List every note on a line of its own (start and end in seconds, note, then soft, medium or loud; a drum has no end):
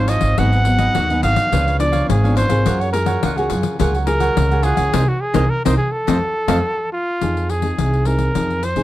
0.00 0.18 G#1 medium
0.00 0.35 G#2 medium
0.00 0.34 F3 medium
0.00 0.34 C4 medium
0.00 0.35 D#4 medium
0.00 0.11 C5 medium
0.08 0.22 F4 medium
0.08 0.23 C5 medium
0.08 0.22 C#5 medium
0.08 0.40 D#5 medium
0.08 0.20 F5 medium
0.08 pandeiro medium
0.21 0.35 G#1 medium
0.21 0.37 C5 soft
0.21 0.37 C#5 soft
0.21 0.36 F5 soft
0.21 pandeiro medium
0.38 0.87 G#1 medium
0.38 0.93 G#2 medium
0.38 0.62 F#3 soft
0.38 0.62 B3 medium
0.38 0.63 D#4 medium
0.38 0.51 F#4 medium
0.38 0.52 G#4 medium
0.38 0.52 B4 medium
0.38 0.52 D#5 medium
0.38 1.23 F#5 loud
0.38 pandeiro medium
0.53 0.65 G#4 soft
0.53 0.66 B4 soft
0.53 0.66 D#5 soft
0.53 pandeiro soft
0.65 1.04 F#3 soft
0.65 1.04 B3 medium
0.65 1.05 D#4 medium
0.65 muted cavaquinho stroke soft
0.65 pandeiro medium
0.79 0.94 G#4 medium
0.79 0.94 B4 medium
0.79 0.93 D#5 medium
0.79 pandeiro medium
0.95 1.20 D#2 medium
0.95 1.49 D#3 medium
0.95 1.08 F#4 medium
0.95 1.09 G#4 medium
0.95 1.09 B4 medium
0.95 1.09 D#5 medium
0.95 pandeiro medium
1.10 1.48 F#3 medium
1.10 1.48 B3 medium
1.10 1.48 D#4 medium
1.10 1.22 G#4 soft
1.10 1.23 B4 soft
1.10 1.23 D#5 soft
1.10 pandeiro soft
1.22 1.35 G#1 medium
1.22 1.50 F#4 soft
1.22 1.51 G#4 medium
1.22 1.51 B4 medium
1.22 1.52 D#5 medium
1.22 1.76 F5 loud
1.22 pandeiro medium
1.36 pandeiro medium
1.52 2.00 C#2 medium
1.52 2.06 C#3 medium
1.52 1.76 F3 soft
1.52 1.76 B3 soft
1.52 1.76 D4 medium
1.52 1.65 F4 medium
1.52 1.66 B4 medium
1.52 1.66 C#5 medium
1.52 1.66 F5 medium
1.52 pandeiro medium
1.67 1.79 B4 soft
1.67 1.79 C#5 soft
1.67 1.80 F5 medium
1.67 pandeiro soft
1.79 2.07 F3 medium
1.79 2.07 B3 medium
1.79 2.07 D4 medium
1.79 2.07 D5 medium
1.79 muted cavaquinho stroke soft
1.79 pandeiro medium
1.92 2.22 B4 medium
1.92 2.22 C#5 medium
1.92 2.21 F5 medium
1.92 pandeiro medium
2.09 2.45 G#1 medium
2.09 2.63 G#2 medium
2.09 2.36 G#4 medium
2.09 pandeiro medium
2.24 2.47 F3 medium
2.24 2.48 B3 medium
2.24 2.48 D4 medium
2.24 2.35 B4 soft
2.24 2.36 C#5 soft
2.24 2.36 F5 medium
2.24 pandeiro soft
2.35 2.50 F4 medium
2.35 2.50 B4 medium
2.35 2.82 C5 loud
2.35 2.49 C#5 medium
2.35 2.48 F5 medium
2.35 pandeiro medium
2.49 2.63 G#1 medium
2.49 2.89 A#3 medium
2.49 2.89 F4 medium
2.49 2.89 G#4 medium
2.49 2.65 B4 soft
2.49 2.64 C#5 soft
2.49 2.64 F5 soft
2.49 pandeiro medium
2.65 3.15 F#2 medium
2.65 3.20 F#3 medium
2.65 2.79 F4 medium
2.65 2.79 A#4 medium
2.65 2.80 C#5 medium
2.65 2.79 F#5 medium
2.65 pandeiro medium
2.80 2.92 A#4 soft
2.80 2.92 C#5 medium
2.80 2.93 C#5 soft
2.80 2.93 F#5 soft
2.80 pandeiro soft
2.93 3.21 A#3 medium
2.93 3.21 F4 medium
2.93 3.21 G#4 medium
2.93 3.39 A#4 medium
2.93 muted cavaquinho stroke soft
2.93 pandeiro medium
3.06 3.22 A#4 medium
3.06 3.21 C#5 medium
3.06 3.21 F#5 medium
3.06 pandeiro medium
3.23 3.47 C#2 medium
3.23 3.77 C#3 medium
3.23 3.36 F4 medium
3.23 3.36 A#4 medium
3.23 3.37 C#5 medium
3.23 3.36 F#5 medium
3.23 pandeiro medium
3.37 3.75 A#3 medium
3.37 3.76 F4 medium
3.37 3.51 F#4 medium
3.37 3.76 G#4 medium
3.37 3.50 A#4 soft
3.37 3.50 C#5 soft
3.37 3.50 F#5 soft
3.37 pandeiro soft
3.50 3.63 F#2 medium
3.50 3.78 F4 medium
3.50 3.79 A#4 medium
3.50 3.79 C#5 medium
3.50 3.79 F#5 medium
3.50 pandeiro medium
3.63 pandeiro medium
3.79 4.28 C#2 medium
3.79 4.34 F#3 medium
3.79 3.96 A#3 medium
3.79 3.93 F4 medium
3.79 3.97 F4 medium
3.79 3.97 G#4 medium
3.79 3.93 A#4 medium
3.79 3.93 C#5 medium
3.79 3.93 F#5 medium
3.79 pandeiro medium
3.95 4.06 A#4 soft
3.95 4.07 C#5 soft
3.95 4.07 F#5 medium
3.95 pandeiro soft
4.07 4.46 A#3 medium
4.07 4.46 F4 medium
4.07 4.46 G#4 medium
4.07 4.65 A#4 loud
4.07 muted cavaquinho stroke soft
4.07 pandeiro medium
4.20 4.50 A#4 medium
4.20 4.49 C#5 medium
4.20 4.49 F#5 medium
4.20 pandeiro medium
4.37 4.73 C#2 loud
4.37 4.91 C#3 medium
4.37 pandeiro medium
4.51 4.89 A#3 medium
4.51 4.89 F4 medium
4.51 4.90 G#4 medium
4.51 4.62 A#4 soft
4.51 4.63 C#5 soft
4.51 4.64 F#5 soft
4.51 pandeiro soft
4.63 4.77 F4 medium
4.63 5.10 G#4 loud
4.63 4.77 A#4 medium
4.63 4.76 C#5 medium
4.63 4.75 F#5 medium
4.63 pandeiro medium
4.76 4.90 C#2 medium
4.76 4.92 A#4 soft
4.76 4.92 C#5 soft
4.76 4.91 F#5 soft
4.76 pandeiro medium
4.93 5.04 C2 medium
4.93 5.03 A#3 medium
4.93 5.03 C4 medium
4.93 5.03 D#4 medium
4.93 5.03 A#4 medium
4.93 5.03 C5 medium
4.93 5.03 D#5 medium
4.93 pandeiro loud
5.09 5.22 F#4 medium
5.21 5.51 G#4 medium
5.34 5.46 C2 loud
5.34 5.44 A#3 medium
5.34 5.44 C4 medium
5.34 5.44 D#4 medium
5.34 5.44 A#4 medium
5.34 5.44 C5 medium
5.34 5.44 D#5 medium
5.34 pandeiro medium
5.50 5.65 A#4 loud
5.65 5.76 C2 medium
5.65 5.74 A#3 medium
5.65 5.74 C4 medium
5.65 5.74 D#4 medium
5.65 5.74 A#4 medium
5.65 5.77 C5 medium
5.65 5.74 C5 medium
5.65 5.74 D#5 medium
5.65 pandeiro loud
5.78 5.93 G#4 medium
5.92 6.92 A4 medium
6.07 6.18 F2 medium
6.07 6.17 F3 medium
6.07 6.17 A3 medium
6.07 6.17 C4 medium
6.07 6.17 C5 loud
6.07 6.17 D#5 medium
6.07 6.17 F5 medium
6.07 pandeiro medium
6.48 6.60 F2 medium
6.48 6.58 F3 medium
6.48 6.58 A3 loud
6.48 6.58 C4 loud
6.48 6.58 C5 medium
6.48 6.58 D#5 medium
6.48 6.58 F5 medium
6.48 pandeiro medium
6.93 7.51 F4 medium
7.21 7.70 F2 medium
7.21 7.76 F3 soft
7.21 7.60 C4 soft
7.21 7.60 D#4 soft
7.21 7.60 G#4 medium
7.21 pandeiro medium
7.37 pandeiro soft
7.50 8.08 G#4 medium
7.50 pandeiro medium
7.62 8.02 C4 soft
7.62 8.02 D#4 soft
7.62 8.02 G#4 medium
7.62 pandeiro soft
7.78 8.27 C2 medium
7.78 8.33 C3 soft
7.78 pandeiro medium
7.94 pandeiro soft
8.05 8.31 C4 soft
8.05 8.31 D#4 soft
8.05 8.31 G#4 medium
8.05 8.66 A#4 medium
8.05 pandeiro medium
8.19 pandeiro soft
8.35 8.72 F2 medium
8.35 8.83 F3 soft
8.35 8.62 C4 soft
8.35 8.63 D#4 soft
8.35 8.63 G#4 soft
8.35 pandeiro medium
8.50 pandeiro soft
8.63 8.83 C5 medium
8.63 pandeiro medium
8.76 8.83 C2 medium
8.76 8.83 C4 medium
8.76 8.83 D#4 medium
8.76 8.83 G#4 medium
8.76 pandeiro soft